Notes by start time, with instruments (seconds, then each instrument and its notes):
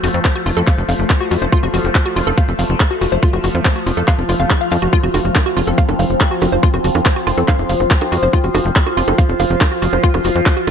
Already playing: synth drone F3 A3, ambient pad F4 C5 C6
0.03 analog synth bass F1, synth arpeggio sound F#4, open hi-hat, shaker
0.14 analog synth bass F2, shaker
0.25 synth arpeggio sound C5, kick, clap, closed hi-hat, shaker
0.35 synth arpeggio sound F#4, closed hi-hat, shaker
0.45 analog synth bass F1, synth arpeggio sound F4, open hi-hat, shaker
0.57 analog synth bass F2, synth arpeggio sound A4, closed hi-hat, shaker
0.67 synth arpeggio sound F5, kick, clap, closed hi-hat, shaker
0.78 analog synth bass F1, closed hi-hat, shaker
0.89 analog synth bass F1, synth arpeggio sound F5, open hi-hat, shaker
0.99 analog synth bass F1, closed hi-hat, shaker
1.10 kick, clap, closed hi-hat, shaker
1.21 synth arpeggio sound F#4, closed hi-hat, shaker
1.31 analog synth bass F2, synth arpeggio sound F#4, open hi-hat, shaker
1.42 analog synth bass F1, synth arpeggio sound C5, shaker
1.52 synth arpeggio sound F4, kick, closed hi-hat, shaker
1.63 analog synth bass F1, synth arpeggio sound F#4, closed hi-hat, shaker
1.73 analog synth bass F1, synth arpeggio sound F#4, open hi-hat, shaker
1.84 analog synth bass F1, closed hi-hat, shaker
1.95 synth arpeggio sound C5, kick, clap, closed hi-hat, shaker
2.05 synth arpeggio sound F#4, closed hi-hat, shaker
2.16 analog synth bass F1, synth arpeggio sound F4, ambient pad F6, open hi-hat, shaker
2.27 analog synth bass F1, synth arpeggio sound A4, closed hi-hat, shaker
2.38 synth arpeggio sound F5, kick, closed hi-hat, shaker
2.48 analog synth bass F1, closed hi-hat, shaker
2.59 analog synth bass F1, synth arpeggio sound F5, open hi-hat, shaker
2.69 analog synth bass F1, closed hi-hat, shaker
2.80 kick, clap, closed hi-hat, shaker
2.90 synth arpeggio sound F#4, closed hi-hat, shaker
3.01 analog synth bass F1, synth arpeggio sound F#4, open hi-hat, shaker
3.12 analog synth bass F1, synth arpeggio sound C5, closed hi-hat, shaker
3.23 synth arpeggio sound F4, kick, closed hi-hat, shaker
3.33 analog synth bass F1, synth arpeggio sound F#4, closed hi-hat, shaker
3.44 analog synth bass F1, synth arpeggio sound F#4, open hi-hat, shaker
3.55 analog synth bass F2, closed hi-hat, shaker
3.65 synth arpeggio sound C5, kick, clap, closed hi-hat, shaker
3.76 synth arpeggio sound F#4, closed hi-hat, shaker
3.86 analog synth bass F1, synth arpeggio sound F4, open hi-hat, shaker
3.96 analog synth bass F2, synth arpeggio sound A4, closed hi-hat, shaker
4.07 synth arpeggio sound F5, kick, clap, closed hi-hat, swell, shaker
4.18 analog synth bass F1, closed hi-hat, shaker
4.29 analog synth bass F1, synth arpeggio sound F4, open hi-hat, shaker
4.39 analog synth bass F1, synth arpeggio sound F5, closed hi-hat, shaker
4.50 kick, clap, closed hi-hat, shaker
4.61 synth arpeggio sound F5, closed hi-hat, shaker
4.71 analog synth bass F2, synth arpeggio sound F5, open hi-hat, shaker
4.82 analog synth bass F1, synth arpeggio sound F#4, closed hi-hat, shaker
4.92 synth drone F3 C4, synth arpeggio sound F4, kick, closed hi-hat, shaker
5.03 analog synth bass F1, synth arpeggio sound F#4, closed hi-hat, shaker
5.14 analog synth bass F1, synth arpeggio sound F#4, open hi-hat, high bongo, shaker
5.25 analog synth bass F1, closed hi-hat, shaker
5.35 synth arpeggio sound C5, kick, clap, closed hi-hat, high bongo, shaker
5.46 synth arpeggio sound F#4, closed hi-hat, shaker
5.57 analog synth bass F1, synth arpeggio sound F4, ambient pad C6, open hi-hat, shaker
5.67 analog synth bass F1, synth arpeggio sound A4, closed hi-hat, high bongo, shaker
5.77 synth arpeggio sound F5, kick, closed hi-hat, shaker
5.89 analog synth bass F1, closed hi-hat, high bongo, shaker
5.99 analog synth bass F1, synth arpeggio sound F5, open hi-hat, shaker
6.10 analog synth bass F1, closed hi-hat, shaker
6.21 kick, clap, closed hi-hat, high bongo, shaker
6.31 synth arpeggio sound F#4, closed hi-hat, shaker
6.41 analog synth bass F1, synth arpeggio sound F#4, open hi-hat, high bongo, shaker
6.52 analog synth bass F1, synth arpeggio sound C5, closed hi-hat, shaker
6.63 synth arpeggio sound F4, kick, closed hi-hat, shaker
6.74 analog synth bass F1, synth arpeggio sound F#4, closed hi-hat, high bongo, shaker
6.84 analog synth bass F1, synth arpeggio sound F#4, open hi-hat, shaker
6.95 analog synth bass F2, closed hi-hat, high bongo, shaker
7.06 synth arpeggio sound C5, kick, clap, closed hi-hat, shaker
7.16 synth arpeggio sound F#4, closed hi-hat, shaker
7.27 analog synth bass F1, synth arpeggio sound F4, open hi-hat, high bongo, shaker
7.38 analog synth bass F2, synth arpeggio sound A4, closed hi-hat, shaker
7.48 synth arpeggio sound F5, kick, clap, closed hi-hat, high bongo, shaker
7.58 analog synth bass F1, closed hi-hat, shaker
7.69 analog synth bass F1, synth arpeggio sound F5, open hi-hat, shaker
7.80 analog synth bass F1, closed hi-hat, high bongo, shaker
7.91 kick, clap, closed hi-hat, shaker
8.01 synth arpeggio sound F#4, closed hi-hat, high bongo, shaker
8.12 analog synth bass F2, synth arpeggio sound F#4, open hi-hat, shaker
8.23 analog synth bass F1, synth arpeggio sound C5, closed hi-hat, shaker
8.33 synth arpeggio sound F4, synth drone F4, kick, closed hi-hat, high bongo, shaker
8.44 analog synth bass F1, synth arpeggio sound F#4, closed hi-hat, shaker
8.54 analog synth bass F1, synth arpeggio sound F#4, open hi-hat, high bongo, shaker
8.65 analog synth bass F1, closed hi-hat, shaker
8.76 synth arpeggio sound C5, kick, clap, closed hi-hat, shaker
8.87 synth arpeggio sound F#4, closed hi-hat, high bongo, shaker
8.97 analog synth bass F1, synth arpeggio sound F4, ambient pad F6, open hi-hat, shaker
9.07 analog synth bass F1, synth arpeggio sound A4, closed hi-hat, high bongo, shaker
9.18 synth arpeggio sound F5, kick, closed hi-hat, shaker
9.29 analog synth bass F1, closed hi-hat, shaker
9.39 analog synth bass F1, synth arpeggio sound F5, open hi-hat, high bongo, shaker
9.50 analog synth bass F1, shaker
9.61 kick, clap, closed hi-hat, high bongo, shaker
9.72 synth arpeggio sound F#4, closed hi-hat, shaker
9.82 analog synth bass F1, synth arpeggio sound F#4, open hi-hat, shaker
9.92 analog synth bass F1, synth arpeggio sound C5, closed hi-hat, high bongo, shaker
10.03 synth arpeggio sound F4, kick, closed hi-hat, shaker
10.14 analog synth bass F1, synth arpeggio sound F#4, closed hi-hat, high bongo, shaker
10.24 analog synth bass F1, synth arpeggio sound F#4, open hi-hat, shaker
10.35 analog synth bass F2, closed hi-hat, shaker
10.46 synth arpeggio sound C5, kick, clap, closed hi-hat, high bongo, shaker
10.57 synth arpeggio sound F#4, closed hi-hat, shaker
10.67 analog synth bass F1, synth arpeggio sound F4, open hi-hat, high bongo